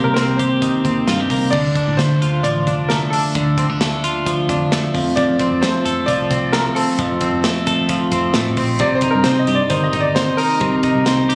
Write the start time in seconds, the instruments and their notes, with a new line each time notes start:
Already playing: clean electric guitar C3 D#3 A#3 C4 G4
0.04 picked electric bass C2, upright piano A#4
0.14 clean electric guitar C4, upright piano A#4, snare, closed hi-hat
0.37 clean electric guitar G4, upright piano C5, kick, closed hi-hat
0.62 clean electric guitar D#3, kick, closed hi-hat
0.85 picked electric bass D#2, clean electric guitar C4, kick, closed hi-hat
1.07 picked electric bass G2, clean electric guitar F4, snare, closed hi-hat
1.20 clean electric guitar G4
1.30 picked electric bass C2, clean electric guitar A#3, kick, open hi-hat
1.51 picked electric bass D2, clean electric guitar D3, upright piano D5, kick, crash
1.75 clean electric guitar D4, kick, closed hi-hat
1.87 picked electric bass A2
1.97 picked electric bass D3, clean electric guitar A3, upright piano C5, snare, closed hi-hat
2.22 picked electric bass D2, clean electric guitar F4, closed hi-hat
2.43 picked electric bass A1, clean electric guitar F3, upright piano D5, kick, closed hi-hat
2.67 picked electric bass F1, clean electric guitar D4, kick, closed hi-hat
2.89 clean electric guitar A3, upright piano A#4, snare, closed hi-hat
3.10 clean electric guitar D4, upright piano A4, open hi-hat
3.35 picked electric bass D2, clean electric guitar D3, kick, closed hi-hat
3.58 clean electric guitar C4, kick, closed hi-hat
3.69 picked electric bass D2, clean electric guitar D4
3.81 clean electric guitar A3, snare, closed hi-hat
4.04 clean electric guitar F4, closed hi-hat
4.26 clean electric guitar F3, kick, closed hi-hat
4.49 picked electric bass F2, clean electric guitar D4, kick, closed hi-hat
4.72 clean electric guitar A3, snare, closed hi-hat
4.94 clean electric guitar F2, picked electric bass F2, kick, open hi-hat
5.16 clean electric guitar F2, upright piano D5, kick, closed hi-hat
5.39 clean electric guitar C4, kick, closed hi-hat
5.51 picked electric bass F2
5.62 picked electric bass F3, clean electric guitar A3, upright piano C5, snare, closed hi-hat
5.85 picked electric bass F2, clean electric guitar A4, closed hi-hat
6.06 picked electric bass C2, clean electric guitar F3, upright piano D5, kick, closed hi-hat
6.31 picked electric bass C2, clean electric guitar C4, kick, closed hi-hat
6.52 clean electric guitar A3, upright piano A#4, snare, closed hi-hat
6.66 upright piano A#4
6.75 clean electric guitar C4, upright piano A4, open hi-hat
6.99 picked electric bass F2, clean electric guitar F2, kick, closed hi-hat
7.21 clean electric guitar C4, kick, closed hi-hat
7.32 picked electric bass F2
7.44 clean electric guitar A3, snare, closed hi-hat
7.67 clean electric guitar A4, kick, closed hi-hat
7.89 clean electric guitar F3, kick, closed hi-hat
8.12 picked electric bass F2, clean electric guitar C4, kick, closed hi-hat
8.34 picked electric bass A2, clean electric guitar A3, snare, closed hi-hat
8.57 picked electric bass A#1, clean electric guitar C4, kick, open hi-hat
8.79 picked electric bass C2, clean electric guitar C3, upright piano D5, kick, closed hi-hat
8.95 upright piano C5
9.01 clean electric guitar D#4, kick, closed hi-hat
9.11 upright piano A#4
9.15 picked electric bass G2
9.24 picked electric bass C3, clean electric guitar C4, upright piano C5, snare, closed hi-hat
9.39 upright piano D#5
9.47 picked electric bass G2, clean electric guitar G4, closed hi-hat
9.55 upright piano D5
9.70 picked electric bass G1, clean electric guitar D#3, upright piano C5, kick, closed hi-hat
9.84 upright piano D#5
9.93 picked electric bass G1, clean electric guitar D#4, kick, closed hi-hat
10.00 upright piano D5
10.15 clean electric guitar C4, upright piano C5, snare, closed hi-hat
10.37 clean electric guitar D#4, upright piano A#4, open hi-hat
10.60 picked electric bass C2, clean electric guitar C3, kick, closed hi-hat
10.83 clean electric guitar D#4, kick, closed hi-hat
10.95 picked electric bass C2
11.06 clean electric guitar C4, snare, closed hi-hat
11.29 clean electric guitar G4, closed hi-hat